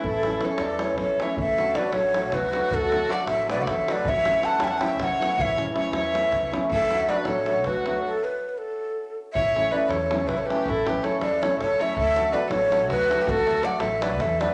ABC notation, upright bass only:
X:1
M:7/8
L:1/8
Q:1/4=159
K:A
V:1 name="Upright bass" clef=bass
A,,,3 E,,2 A,,,2 | D,,3 A,,,2 D,,2 | D,,3 A,,,2 E,,2 | A,,,3 E,,2 A,,,2 |
A,,,3 E,,2 C,,2 | D,,3 A,,,2 D,,2 | z6 z | A,,,3 E,,2 A,,,2 |
A,,,3 E,,2 A,,,2 | D,,3 A,,,2 D,,2 | D,,3 A,,,2 E,,2 |]